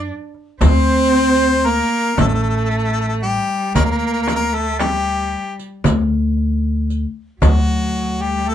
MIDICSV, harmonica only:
0, 0, Header, 1, 2, 480
1, 0, Start_track
1, 0, Tempo, 1048951
1, 277, Time_signature, 10, 3, 24, 8
1, 3912, End_track
2, 0, Start_track
2, 0, Title_t, "Harmonica"
2, 0, Program_c, 0, 22
2, 283, Note_on_c, 0, 72, 103
2, 759, Note_on_c, 0, 70, 93
2, 766, Note_off_c, 0, 72, 0
2, 998, Note_off_c, 0, 70, 0
2, 1006, Note_on_c, 0, 69, 84
2, 1033, Note_off_c, 0, 69, 0
2, 1044, Note_on_c, 0, 69, 60
2, 1069, Note_off_c, 0, 69, 0
2, 1072, Note_on_c, 0, 69, 61
2, 1101, Note_off_c, 0, 69, 0
2, 1111, Note_on_c, 0, 69, 58
2, 1137, Note_off_c, 0, 69, 0
2, 1142, Note_on_c, 0, 69, 61
2, 1169, Note_off_c, 0, 69, 0
2, 1174, Note_on_c, 0, 69, 54
2, 1203, Note_off_c, 0, 69, 0
2, 1211, Note_on_c, 0, 69, 56
2, 1234, Note_off_c, 0, 69, 0
2, 1237, Note_on_c, 0, 69, 48
2, 1268, Note_off_c, 0, 69, 0
2, 1273, Note_on_c, 0, 69, 59
2, 1294, Note_off_c, 0, 69, 0
2, 1297, Note_on_c, 0, 69, 55
2, 1332, Note_off_c, 0, 69, 0
2, 1338, Note_on_c, 0, 69, 68
2, 1370, Note_off_c, 0, 69, 0
2, 1377, Note_on_c, 0, 69, 50
2, 1407, Note_off_c, 0, 69, 0
2, 1410, Note_on_c, 0, 69, 65
2, 1440, Note_off_c, 0, 69, 0
2, 1477, Note_on_c, 0, 67, 81
2, 1699, Note_off_c, 0, 67, 0
2, 1717, Note_on_c, 0, 70, 85
2, 1748, Note_off_c, 0, 70, 0
2, 1761, Note_on_c, 0, 70, 59
2, 1788, Note_off_c, 0, 70, 0
2, 1791, Note_on_c, 0, 70, 66
2, 1819, Note_off_c, 0, 70, 0
2, 1821, Note_on_c, 0, 70, 54
2, 1852, Note_off_c, 0, 70, 0
2, 1859, Note_on_c, 0, 70, 60
2, 1888, Note_off_c, 0, 70, 0
2, 1891, Note_on_c, 0, 70, 53
2, 1921, Note_off_c, 0, 70, 0
2, 1933, Note_on_c, 0, 70, 64
2, 1958, Note_off_c, 0, 70, 0
2, 1960, Note_on_c, 0, 70, 59
2, 1990, Note_off_c, 0, 70, 0
2, 1993, Note_on_c, 0, 70, 73
2, 2083, Note_on_c, 0, 69, 76
2, 2090, Note_off_c, 0, 70, 0
2, 2190, Note_off_c, 0, 69, 0
2, 2193, Note_on_c, 0, 67, 81
2, 2536, Note_off_c, 0, 67, 0
2, 3399, Note_on_c, 0, 66, 78
2, 3761, Note_on_c, 0, 67, 74
2, 3768, Note_off_c, 0, 66, 0
2, 3883, Note_on_c, 0, 69, 80
2, 3890, Note_off_c, 0, 67, 0
2, 3912, Note_off_c, 0, 69, 0
2, 3912, End_track
0, 0, End_of_file